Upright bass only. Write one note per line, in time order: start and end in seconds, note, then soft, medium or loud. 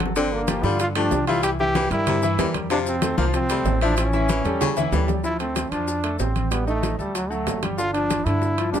0.00 0.58 G1 medium
0.63 1.08 G2 medium
1.11 1.85 C2 medium
1.91 2.35 G2 loud
2.38 3.12 F2 medium
3.18 3.62 C2 loud
3.65 4.39 A1 medium
4.44 4.89 E2 loud
4.92 5.66 D2 loud
5.72 6.16 F2 medium
6.20 6.93 A1 medium
6.99 7.43 D2 medium
7.46 8.20 G1 medium
8.26 8.70 G2 medium
8.73 8.80 F2 medium